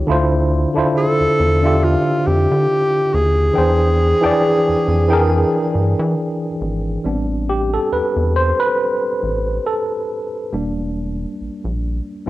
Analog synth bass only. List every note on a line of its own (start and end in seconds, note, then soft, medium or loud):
0.09 0.66 D2 loud
0.77 0.84 E2 soft
1.20 1.28 E2 soft
1.40 1.96 E2 medium
2.27 2.47 F2 medium
2.52 2.67 D3 medium
3.14 3.50 D#2 medium
3.58 4.14 E2 loud
4.25 4.32 F2 soft
4.69 4.76 F2 soft
4.88 5.44 F2 medium
5.75 5.95 G2 medium
5.99 6.15 E3 loud
6.61 6.97 G#1 medium
7.05 7.78 A1 medium
7.92 8.02 E2 soft
8.16 8.52 E2 medium
9.23 9.59 A1 medium
10.53 11.25 E1 loud
11.41 11.50 A#1 soft
11.64 12.00 A#1 medium